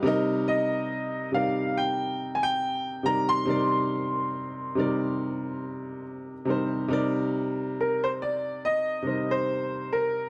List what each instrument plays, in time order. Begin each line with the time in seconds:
0.03 upright piano C3 G3 D#4 A#4
0.07 upright piano D#5
0.48 grand piano D#5
1.32 upright piano C3 G3 D#4 A#4, grand piano F5
1.37 upright piano D5
1.77 grand piano G5
2.35 grand piano G#5
2.43 grand piano G5
3.03 upright piano C3 G3 D#4 A#4, grand piano A#5
3.07 upright piano D5
3.29 grand piano C6
3.45 upright piano C3 G3 D#4 A#4
3.50 upright piano D5
4.75 upright piano C3 G3 D#4 A#4
4.80 upright piano D5
6.45 upright piano C3 G3 D#4 A#4
6.50 upright piano C5
6.88 upright piano C3 G3 D#4 A#4
6.93 upright piano D5
7.81 grand piano A#4
8.04 grand piano C5
8.22 grand piano D5
8.65 grand piano D#5
9.02 upright piano C3 G3 D#4 A#4
9.07 upright piano C5
9.31 grand piano C5
9.93 grand piano A#4